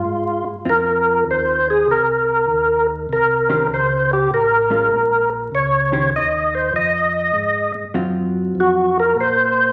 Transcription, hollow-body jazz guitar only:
X:1
M:4/4
L:1/8
Q:"Swing" 1/4=99
K:Ab
V:1 name="Hollow-body jazz guitar"
z2 [CF]3 z3 | z3 [E,DGc] z3 [A,DF] | z3 [E,DGc] z4 | z2 [_G,CF]3 z3 |]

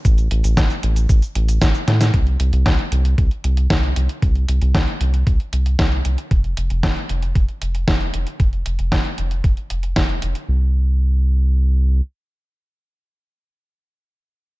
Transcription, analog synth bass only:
X:1
M:4/4
L:1/16
Q:1/4=115
K:Flyd
V:1 name="Analog synth bass" clef=bass
A,,,2 A,,, A,,, A,,, z A,,,2 A,,, z A,,,2 A,,, z A,,2 | C,,2 C,, C,, C,, z C,,2 C,, z C,,2 C,,2 C,, z | C,,2 C,, C,, C,, z C,,2 C,, z C,,2 C,,2 C,, z | F,,,2 F,,, F,,, F,,, z F,,,2 F,,, z F,,,2 F,,,2 F,,, z |
F,,,2 F,,, F,,, F,,, z F,,,2 F,,, z F,,,2 F,,,2 F,,, z | C,,12 z4 | z16 |]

